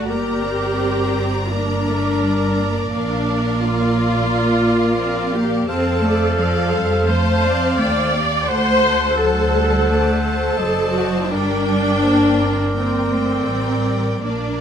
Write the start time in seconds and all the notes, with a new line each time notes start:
0.07 G1 A#3 G4 A#4 D5 A#5
0.44 C4
1.52 A#3 D4 A#4 D5
1.88 A3
2.23 G3
2.58 A#3
2.92 A#1 A#3 D4 A#4 D5 F5
3.61 F4 A#4 D5
4.99 C4
5.33 A#3 G4
5.68 F2 C4 A4 C5 F5 A5
6.03 A3 D5
6.39 F3 D5 F5
6.73 G3 C5
7.08 A3 A4 C5 F5 A5
7.43 C4 D5
7.77 D#2 A3 C5 D5 G5
8.12 A#3 G4
8.47 D2 A3 A4 C5 F#5
9.17 F#3 A4 C5 F#5 A5
9.53 G3
9.88 A3 D5 A5
10.23 A4 C5
10.58 F#1 F#3 D5 D#5
10.95 F#4
11.30 G1 G3 D4 A#4 D5 G5
11.69 D5
12.04 A#3 C5
12.40 C4 A#4
12.75 A#3 C4 A#4 G5
13.12 A3 C5
13.48 A1 G3 A#4 D5
14.23 A#1 A#3 D4 A#4 D5